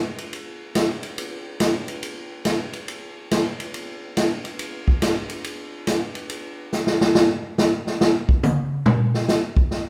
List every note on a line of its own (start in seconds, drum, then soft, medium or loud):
0.18 ride medium
0.33 ride medium
0.75 snare medium
0.75 hi-hat pedal medium
0.75 ride medium
1.03 ride soft
1.18 ride medium
1.60 snare medium
1.60 hi-hat pedal medium
1.60 ride medium
1.88 ride soft
2.03 ride medium
2.45 snare medium
2.45 hi-hat pedal medium
2.45 ride medium
2.73 ride soft
2.88 ride medium
3.31 snare medium
3.31 hi-hat pedal medium
3.31 ride medium
3.60 ride medium
3.74 ride medium
4.17 snare medium
4.17 hi-hat pedal soft
4.17 ride medium
4.45 ride soft
4.59 ride medium
4.88 kick medium
5.02 snare medium
5.02 hi-hat pedal medium
5.02 ride medium
5.30 ride medium
5.44 ride medium
5.87 snare medium
5.87 hi-hat pedal medium
5.87 ride medium
6.15 ride soft
6.30 ride medium
6.72 snare soft
6.72 hi-hat pedal medium
6.87 snare medium
7.01 snare medium
7.15 snare loud
7.58 snare medium
7.58 hi-hat pedal medium
7.87 snare soft
8.01 snare loud
8.29 kick medium
8.43 hi-hat pedal medium
8.43 high tom loud
8.86 mid tom loud
9.14 snare soft
9.28 snare medium
9.28 hi-hat pedal medium
9.57 kick medium
9.71 snare soft